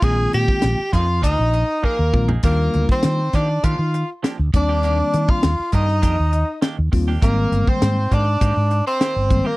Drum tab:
CC |----------------|x---------------|----------------|----------------|
HH |x-x-x-x-x-x-----|x-x-x-x-x-x-x-x-|x-x-x-x-x-x-x-o-|x-x-x-x-x-x-x-x-|
SD |----o-o---------|----o-o-----o---|----o--o----o---|----o-------o---|
FT |---------------o|----------------|----------------|----------------|
BD |o--o--o-o---o-o-|o--o--o-o-----o-|---o--o-o-----o-|o--o--o-o-----o-|